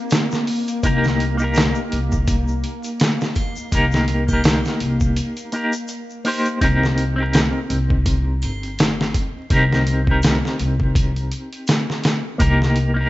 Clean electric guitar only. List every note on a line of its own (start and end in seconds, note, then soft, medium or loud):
0.00 0.78 C4 medium
0.00 0.79 D#4 medium
0.00 0.80 G4 medium
0.00 0.81 A#4 medium
0.83 1.35 A#3 medium
0.83 1.35 D#4 medium
0.83 1.36 G4 medium
0.83 1.36 A#4 loud
1.37 3.67 A#3 medium
1.37 3.68 D#4 medium
1.42 3.69 G4 medium
1.42 3.71 A#4 medium
3.72 4.24 A#3 medium
3.72 4.24 D#4 medium
3.72 4.25 G4 medium
3.72 4.25 A#4 loud
4.27 5.49 A#3 medium
4.27 5.50 D#4 medium
4.31 5.51 G4 medium
4.31 5.52 A#4 medium
5.53 5.73 A#3 medium
5.53 5.74 D#4 medium
5.53 5.74 G4 medium
5.53 5.75 A#4 medium
6.25 6.57 A#3 loud
6.25 6.58 D#4 medium
6.25 6.58 G4 medium
6.25 6.59 C5 loud
6.61 7.13 C4 medium
6.61 7.13 D#4 medium
6.61 7.14 G4 medium
6.61 7.15 A#4 medium
7.16 9.46 C4 medium
7.16 9.47 D#4 medium
7.20 9.48 G4 medium
7.20 9.49 A#4 medium
9.50 10.02 C4 medium
9.50 10.02 D#4 medium
9.50 10.03 G4 medium
9.50 10.04 A#4 loud
10.04 12.35 C4 medium
10.04 12.36 D#4 medium
10.09 12.37 G4 medium
10.09 12.38 A#4 medium
12.38 12.91 A#3 medium
12.38 12.91 D#4 medium
12.38 12.92 G4 medium
12.38 12.92 A#4 loud
12.94 13.09 A#3 medium
12.94 13.09 D#4 medium
12.99 13.09 G4 medium
12.99 13.09 A#4 medium